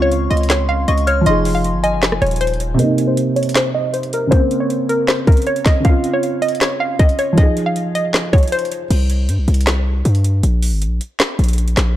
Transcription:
Already playing: 808-style bass C#2, felt piano C#3 C4 F4, synth bell C#6
0.02 synth pluck C#5
0.12 closed hi-hat
0.30 808-style bass C#2, synth pluck D#5, synth bell C6, closed hi-hat
0.37 closed hi-hat
0.43 closed hi-hat
0.50 synth pluck C#5, snare, clap, closed hi-hat
0.69 synth pluck F5
0.88 808-style bass C#2, synth pluck D#5, synth bell C#6, closed hi-hat
0.98 closed hi-hat
1.07 synth pluck C#5, synth bell F6, closed hi-hat
1.21 felt piano F3
1.26 808-style bass F1, felt piano D#4, synth pluck D#5, synth bell C6, closed hi-hat
1.30 felt piano G#4
1.45 open hi-hat
1.55 synth pluck F5
1.64 closed hi-hat
1.74 808-style bass G1
1.83 synth pluck D#5, synth bell G#5, closed hi-hat
1.98 808-style bass F1
2.03 snare, clap
2.12 cross-stick
2.22 808-style bass D#1, synth pluck C#5, closed hi-hat
2.26 closed hi-hat
2.31 closed hi-hat
2.36 closed hi-hat
2.41 synth pluck C5, closed hi-hat
2.47 closed hi-hat
2.54 closed hi-hat
2.60 closed hi-hat
2.74 felt piano C3
2.79 felt piano A#3, synth pluck D#5, closed hi-hat
2.84 felt piano D#4
2.98 closed hi-hat
3.07 synth pluck C5
3.17 closed hi-hat
3.36 synth pluck C#5, closed hi-hat
3.43 closed hi-hat
3.49 closed hi-hat
3.55 synth pluck C5, snare, clap, closed hi-hat
3.75 synth pluck D#5
3.94 synth pluck C5, closed hi-hat
4.03 closed hi-hat
4.13 synth pluck A#4, closed hi-hat
4.27 felt piano C#3, synth pluck C5
4.32 felt piano A#3, kick, closed hi-hat
4.36 felt piano C4
4.51 closed hi-hat
4.60 synth pluck C#5
4.70 closed hi-hat
4.89 synth pluck A#4, closed hi-hat
5.08 synth pluck C5, snare, clap
5.27 synth pluck A#4, kick, closed hi-hat
5.32 closed hi-hat
5.37 closed hi-hat
5.42 closed hi-hat
5.47 synth pluck C#5, closed hi-hat
5.56 closed hi-hat
5.66 synth pluck D#5, kick, snare, clap, closed hi-hat
5.80 felt piano C#3
5.85 felt piano C4, synth pluck F5, kick, closed hi-hat
5.89 felt piano F4
6.04 closed hi-hat
6.13 synth pluck C#5
6.23 closed hi-hat
6.42 synth pluck D#5, closed hi-hat
6.48 closed hi-hat
6.55 closed hi-hat
6.61 synth pluck C#5, snare, clap, closed hi-hat
6.80 synth pluck F5
6.99 synth pluck D#5, kick, closed hi-hat
7.09 closed hi-hat
7.19 synth pluck C#5, closed hi-hat
7.33 felt piano F3
7.37 felt piano D#4, synth pluck D#5, kick, closed hi-hat
7.42 felt piano G#4
7.57 closed hi-hat
7.66 synth pluck F5
7.76 closed hi-hat
7.95 synth pluck D#5, closed hi-hat
8.14 snare, clap
8.33 synth pluck C#5, kick, closed hi-hat
8.38 closed hi-hat
8.43 closed hi-hat
8.48 closed hi-hat
8.52 synth pluck C5, closed hi-hat
8.59 closed hi-hat
8.65 closed hi-hat
8.72 closed hi-hat
8.90 808-style bass C2, closed hi-hat, crash
9.10 closed hi-hat
9.29 808-style bass G2, closed hi-hat
9.38 808-style bass C2
9.48 808-style bass C2, closed hi-hat
9.54 closed hi-hat
9.61 closed hi-hat
9.67 snare, clap, closed hi-hat
10.05 808-style bass G2, closed hi-hat
10.15 closed hi-hat
10.24 closed hi-hat
10.43 808-style bass A#1, closed hi-hat
10.63 open hi-hat
10.72 808-style bass G#1
10.82 closed hi-hat
10.86 808-style bass A#1
11.01 closed hi-hat
11.20 snare, clap
11.39 808-style bass A#1, closed hi-hat
11.44 closed hi-hat
11.48 closed hi-hat
11.53 closed hi-hat
11.58 closed hi-hat
11.68 closed hi-hat
11.77 808-style bass A#1, snare, clap, closed hi-hat

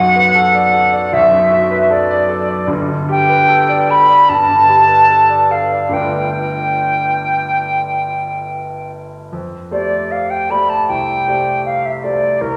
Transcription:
Already playing: grand piano B1 F#2 F#4, flute F#5
0.16 grand piano B4
0.35 grand piano A4
0.54 grand piano D5
0.74 grand piano A4
0.93 grand piano D5
1.13 grand piano B1, flute E5
1.32 grand piano F#2
1.51 grand piano F#4
1.71 grand piano B4
1.90 grand piano A4, flute D5
2.11 grand piano D5
2.29 grand piano A4
2.49 grand piano D5
2.67 grand piano G1 G2
2.88 grand piano D3
3.09 grand piano G4, flute G5
3.29 grand piano B4
3.48 grand piano A4
3.69 grand piano D5
3.88 grand piano A4, flute B5
4.09 grand piano D5
4.28 grand piano G2, flute A5
4.48 grand piano D3
4.69 grand piano G4
4.88 grand piano B4
5.09 grand piano A4
5.30 grand piano D5
5.50 grand piano A4, flute F5
5.72 grand piano D5
5.89 grand piano G2 A3 F4 B4, flute G5
5.93 grand piano G1 D5
9.32 grand piano F2
9.71 grand piano A3 G4 C5 D5, flute D5
10.11 flute F5
10.30 flute G5
10.50 grand piano A3 G4 C5 D5, flute B5
10.69 flute A5
10.87 grand piano C2, flute G5
11.27 grand piano A3 G4 C5 D5
11.65 flute F5
11.85 flute E5
12.03 grand piano A3 G4 C5 D5, flute D5
12.41 grand piano C2, flute A#4

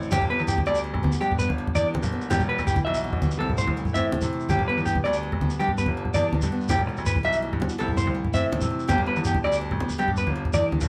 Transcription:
Already playing: steel-string acoustic guitar E4
0.02 shekere
0.11 grand piano G1, steel-string acoustic guitar G2 G4, clean electric guitar G4, high conga, low conga, shekere
0.22 low conga
0.30 steel-string acoustic guitar B3, clean electric guitar B4
0.38 grand piano E2, low conga, shekere
0.47 steel-string acoustic guitar D3, clean electric guitar G4, shekere
0.58 high conga, low conga
0.66 grand piano D2, steel-string acoustic guitar D4, clean electric guitar D5, shekere
0.75 shekere
0.84 steel-string acoustic guitar G2
0.94 grand piano D2, low conga
1.03 steel-string acoustic guitar B3, high conga
1.12 low conga, shekere
1.21 steel-string acoustic guitar G2 G4, grand piano G2, clean electric guitar G4, shekere
1.32 low conga
1.39 steel-string acoustic guitar B3, clean electric guitar B4, shekere
1.49 grand piano G1, high conga
1.58 steel-string acoustic guitar D3
1.67 low conga
1.75 grand piano E2, steel-string acoustic guitar D4, clean electric guitar D5, shekere
1.94 steel-string acoustic guitar G2, high conga
2.03 grand piano F#1, low conga, shekere
2.12 steel-string acoustic guitar B3, low conga
2.21 shekere
2.30 grand piano E1, steel-string acoustic guitar E2 G4, clean electric guitar G4, high conga, shekere
2.40 low conga, shekere
2.49 steel-string acoustic guitar G3, clean electric guitar B4
2.58 grand piano D2, low conga, shekere
2.67 steel-string acoustic guitar E3, clean electric guitar G4, low conga, shekere
2.76 high conga, low conga, shekere
2.85 grand piano B1, steel-string acoustic guitar B3, clean electric guitar E5
2.94 low conga, shekere
3.04 steel-string acoustic guitar B2, low conga
3.13 grand piano B1, low conga
3.22 steel-string acoustic guitar G3, high conga, shekere
3.31 shekere
3.39 grand piano C2, steel-string acoustic guitar C3 E4, clean electric guitar A4
3.50 low conga
3.58 steel-string acoustic guitar A3, clean electric guitar C5, shekere
3.67 grand piano C2, high conga, low conga
3.77 steel-string acoustic guitar E3, low conga, shekere
3.85 low conga, shekere
3.94 grand piano A2, steel-string acoustic guitar C4, clean electric guitar E5, shekere
4.03 low conga
4.12 muted steel-string acoustic guitar stroke, high conga
4.21 grand piano C3, low conga, shekere
4.33 steel-string acoustic guitar A3
4.40 shekere
4.49 grand piano G1, steel-string acoustic guitar G2 G4, clean electric guitar G4, high conga, low conga, shekere
4.59 low conga
4.68 steel-string acoustic guitar B3, clean electric guitar B4
4.77 grand piano E2, low conga, shekere
4.86 steel-string acoustic guitar D3, clean electric guitar G4, shekere
4.95 high conga, low conga
5.04 grand piano D2, steel-string acoustic guitar D4, clean electric guitar D5, low conga, shekere
5.13 shekere
5.23 steel-string acoustic guitar G2
5.32 grand piano D2, low conga
5.41 steel-string acoustic guitar B3, high conga
5.50 low conga, shekere
5.59 steel-string acoustic guitar G2 G4, grand piano G2, clean electric guitar G4, shekere
5.68 low conga
5.78 steel-string acoustic guitar B3, clean electric guitar B4, shekere
5.86 grand piano G1, high conga
5.97 steel-string acoustic guitar D3
6.05 low conga
6.14 grand piano E2, steel-string acoustic guitar D4, clean electric guitar D5, shekere
6.33 steel-string acoustic guitar G2, high conga
6.42 grand piano G2, low conga, shekere
6.52 steel-string acoustic guitar B3, low conga
6.61 shekere
6.68 grand piano E1, steel-string acoustic guitar E2, clean electric guitar G4, muted steel-string acoustic guitar stroke, high conga, low conga, shekere
6.79 low conga
6.87 steel-string acoustic guitar G3, muted clean electric guitar stroke
6.97 grand piano D2, low conga, shekere
7.06 steel-string acoustic guitar E3, clean electric guitar B4, shekere
7.16 high conga, low conga
7.23 grand piano B1, steel-string acoustic guitar G2, clean electric guitar E5, low conga, shekere
7.33 shekere
7.42 steel-string acoustic guitar A2
7.53 grand piano G2, low conga
7.60 steel-string acoustic guitar B2, high conga
7.69 low conga, shekere
7.78 grand piano C2, steel-string acoustic guitar C3 E4, clean electric guitar A4, shekere
7.88 low conga
7.97 steel-string acoustic guitar A3, clean electric guitar C5, shekere
8.06 grand piano C2, high conga
8.14 steel-string acoustic guitar E3
8.24 low conga
8.33 grand piano A2, steel-string acoustic guitar C4, clean electric guitar E5, shekere
8.52 steel-string acoustic guitar G2, high conga
8.61 grand piano C3, low conga, shekere
8.70 steel-string acoustic guitar A3, low conga
8.79 shekere
8.88 grand piano G1, steel-string acoustic guitar G2 D3 B3 D4 G4, clean electric guitar G4, high conga, low conga, shekere
8.98 low conga
9.06 steel-string acoustic guitar B3, clean electric guitar B4
9.16 grand piano E2, low conga, shekere
9.25 steel-string acoustic guitar D3, clean electric guitar G4, shekere
9.35 high conga, low conga
9.44 grand piano D2, steel-string acoustic guitar D4, clean electric guitar D5, low conga, shekere
9.52 shekere
9.61 steel-string acoustic guitar G2
9.71 grand piano D2, low conga
9.80 steel-string acoustic guitar B3, high conga
9.89 low conga, shekere
9.98 steel-string acoustic guitar G2 G4, grand piano G2, clean electric guitar G4
10.08 low conga
10.17 steel-string acoustic guitar B3, clean electric guitar B4, shekere
10.27 grand piano G1, high conga
10.35 steel-string acoustic guitar D3
10.45 low conga
10.53 grand piano E2, steel-string acoustic guitar A2, clean electric guitar D5, shekere
10.72 steel-string acoustic guitar G2, high conga
10.81 grand piano F#1, low conga, shekere

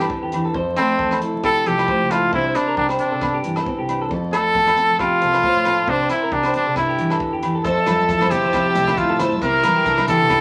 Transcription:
Already playing: steel-string acoustic guitar G2 E3 C4 D4 G4
0.00 clean electric guitar A4, low agogo
0.10 steel-string acoustic guitar D3, kick
0.22 fingered electric bass E2, clean electric guitar G4
0.32 steel-string acoustic guitar E3, closed hi-hat, low agogo
0.45 clean electric guitar A4
0.54 fingered electric bass F2, steel-string acoustic guitar F2 A4, clean electric guitar C5, kick
0.76 steel-string acoustic guitar A3, trumpet C4, clean electric guitar A4, cross-stick, closed hi-hat, low agogo
0.99 fingered electric bass E2, steel-string acoustic guitar A4, clean electric guitar A4, kick
1.11 cross-stick, low agogo
1.22 steel-string acoustic guitar E4, clean electric guitar A4, closed hi-hat
1.34 fingered electric bass F3
1.43 steel-string acoustic guitar C3, clean electric guitar G4, trumpet A4, kick, cross-stick, low agogo
1.66 fingered electric bass C2, steel-string acoustic guitar F3, trumpet G4, clean electric guitar A4, closed hi-hat
1.78 cross-stick, low agogo
1.88 steel-string acoustic guitar A3, clean electric guitar C5, kick
2.01 fingered electric bass C#2
2.11 trumpet F4, clean electric guitar A4, cross-stick, closed hi-hat, low agogo
2.33 fingered electric bass C2, steel-string acoustic guitar C3 D4, trumpet E4, clean electric guitar C5, kick
2.46 clean electric guitar C5
2.55 steel-string acoustic guitar C4, trumpet D4, cross-stick, closed hi-hat, low agogo
2.67 clean electric guitar A#4
2.77 fingered electric bass C2, trumpet D4, steel-string acoustic guitar G4, kick
2.89 clean electric guitar C5, cross-stick, low agogo
2.99 trumpet D4, steel-string acoustic guitar D4, closed hi-hat
3.12 fingered electric bass C3, clean electric guitar A4
3.21 steel-string acoustic guitar G2, kick, cross-stick, low agogo
3.34 clean electric guitar G4
3.44 fingered electric bass G2, steel-string acoustic guitar E3, closed hi-hat
3.56 clean electric guitar A4, cross-stick, low agogo
3.66 steel-string acoustic guitar C4, kick
3.79 fingered electric bass C2, clean electric guitar G4
3.89 steel-string acoustic guitar D4, closed hi-hat, low agogo
4.02 clean electric guitar A4
4.11 steel-string acoustic guitar F2 A4, fingered electric bass F2, muted clean electric guitar stroke, kick
4.33 steel-string acoustic guitar A3, trumpet A4, clean electric guitar A4, cross-stick, closed hi-hat, low agogo
4.55 fingered electric bass E2, steel-string acoustic guitar C4, clean electric guitar A4, kick
4.67 cross-stick, low agogo
4.77 steel-string acoustic guitar C4, clean electric guitar A4, closed hi-hat
4.90 fingered electric bass F3
4.99 steel-string acoustic guitar C3, trumpet F4, clean electric guitar G4, kick, cross-stick, low agogo
5.21 fingered electric bass C2, steel-string acoustic guitar F3, clean electric guitar A4, closed hi-hat
5.33 cross-stick, low agogo
5.43 steel-string acoustic guitar A2, clean electric guitar C5, kick
5.56 fingered electric bass A2
5.65 steel-string acoustic guitar A#2, clean electric guitar A4, cross-stick, closed hi-hat, low agogo
5.87 fingered electric bass C2, steel-string acoustic guitar C3 G4, trumpet D4, clean electric guitar C5, kick
6.00 clean electric guitar C5
6.09 trumpet E4, muted steel-string acoustic guitar stroke, cross-stick, closed hi-hat, low agogo
6.23 clean electric guitar A#4
6.32 fingered electric bass C2, trumpet D4, steel-string acoustic guitar G4, kick
6.43 clean electric guitar C5, cross-stick, low agogo
6.54 steel-string acoustic guitar D4, trumpet D4, closed hi-hat
6.66 fingered electric bass C3, clean electric guitar A4
6.76 steel-string acoustic guitar G2, trumpet E4, kick, cross-stick, low agogo
6.89 clean electric guitar G4
6.98 fingered electric bass G2, steel-string acoustic guitar E3, closed hi-hat
7.10 clean electric guitar A4, cross-stick, low agogo
7.20 steel-string acoustic guitar D3, kick
7.32 fingered electric bass E2, clean electric guitar G4
7.43 steel-string acoustic guitar E3, closed hi-hat, low agogo
7.55 clean electric guitar A4
7.64 fingered electric bass F2, steel-string acoustic guitar F2, trumpet A4, clean electric guitar C5, transistor combo organ E5 A5 E6, kick, maracas
7.86 steel-string acoustic guitar F3, clean electric guitar A4, cross-stick, closed hi-hat, high conga, low agogo, maracas
7.99 maracas
8.09 fingered electric bass E2, steel-string acoustic guitar E4, clean electric guitar A4, kick, maracas
8.21 clean electric guitar C5, cross-stick, high conga, low agogo
8.31 steel-string acoustic guitar F3, trumpet G4, closed hi-hat, low conga, maracas
8.43 fingered electric bass F3, clean electric guitar C5, maracas
8.53 steel-string acoustic guitar C3, kick, cross-stick, low agogo, maracas
8.66 clean electric guitar G4
8.75 fingered electric bass C2, steel-string acoustic guitar A3, closed hi-hat, high conga, maracas
8.87 cross-stick, low conga, low agogo, maracas
8.97 steel-string acoustic guitar E4, trumpet F4, kick, maracas
9.10 fingered electric bass A2, clean electric guitar A4
9.19 steel-string acoustic guitar E4, clean electric guitar C5, cross-stick, closed hi-hat, low conga, low agogo, maracas
9.32 high conga
9.42 fingered electric bass C2, steel-string acoustic guitar C3, trumpet A#4, transistor combo organ E5 C6 D6, kick, maracas
9.63 steel-string acoustic guitar E3, clean electric guitar A#4, cross-stick, closed hi-hat, high conga, low agogo, maracas
9.76 clean electric guitar G4
9.86 fingered electric bass C2, steel-string acoustic guitar D4, clean electric guitar A4, kick, maracas
9.98 cross-stick, high conga, low agogo
10.07 steel-string acoustic guitar E3, clean electric guitar G4, trumpet A4, closed hi-hat, low conga, maracas
10.20 fingered electric bass C3, maracas
10.30 steel-string acoustic guitar G2, clean electric guitar G4, kick, cross-stick, low agogo, maracas

